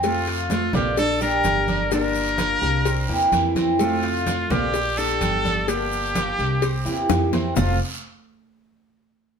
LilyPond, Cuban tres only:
\new Staff \with { instrumentName = "Cuban tres" } { \time 4/4 \key f \major \tempo 4 = 127 c'8 f'4 d''4 g'4 d''8 | d'4 f'4 c'8 g'4 c'8~ | c'8 f'4 d''4 g'4 d''8 | d'4 f'4 c'8 g'4 c'8 |
<f' c'' f''>8 r2. r8 | }